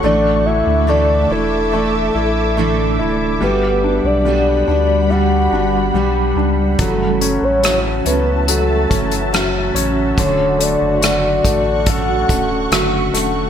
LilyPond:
<<
  \new Staff \with { instrumentName = "Ambient pad" } { \time 4/4 \key d \major \tempo 4 = 71 << { <e'' d'''>1 | <fis'' b''>1 | <e'' a''>1 | <fis'' cis'''>1 | } \\ { a'1 | g1 | fis'1~ | fis'1 | } >> }
  \new Staff \with { instrumentName = "Soft synth lead" } { \time 4/4 \key d \major d''8 e''8 d''8 a'2 r8 | b'8. d''8. d''8 fis''4. r8 | a'8. cis''16 cis''8 b'8 a'4. r8 | cis''8 d''8 d''4 fis''4. r8 | }
  \new Staff \with { instrumentName = "Grand piano" } { \time 4/4 \key d \major a8 e'8 a8 e'8 a8 e'8 a8 e'8 | g8 d'8 g8 d'8 g8 d'8 g8 d'8 | fis8 cis'8 fis8 cis'8 fis8 cis'8 fis8 cis'8 | d8 a8 fis'8 a8 a'8 a8 fis'8 a8 | }
  \new Staff \with { instrumentName = "Steel-string acoustic guitar" } { \time 4/4 \key d \major <a, d e a d' a'>4 <a, d e a d' a'>8 <e a d' a'>8 <e a d' a'>8 <e a d' a'>8 <a, d e a d' a'>4 | <g b d' fis'>4 <g b d' fis'>8 <b d' fis'>8 <g b d' fis'>8 <b d' fis'>8 <g b d' fis'>4 | <fis, cis e a cis' fis'>4 <fis, cis e a cis' fis'>8 <e a cis' fis'>8 <e a cis' fis'>8 <e a cis' fis'>8 <fis, cis e a cis' fis'>4 | <d fis a fis'>4 <d fis a fis'>8 <a fis'>8 <fis a cis' fis'>8 <a cis' fis'>8 <d fis a cis' fis'>4 | }
  \new Staff \with { instrumentName = "Sub bass" } { \clef bass \time 4/4 \key d \major a,,8. d,8. e,,4 a,,4 d,,8 | g,,8. b,,8. d,4 g,,8 b,,8 cis,8 | fis,,8. a,,8. cis,4 fis,,4 a,,8 | d,,8. fis,,8. a,,4 d,,8 fis,,8 e,,8 | }
  \new DrumStaff \with { instrumentName = "Drums" } \drummode { \time 4/4 r4 r4 r4 r4 | r4 r4 r4 r4 | <hh bd>8 hh8 <hh ss>8 hh8 hh8 <hh bd>16 hh16 <hh ss>8 hh8 | <hh bd>8 hh8 <hh ss>8 <hh bd>8 <hh bd>8 <hh bd>8 <hh ss>8 <hh ss>8 | }
>>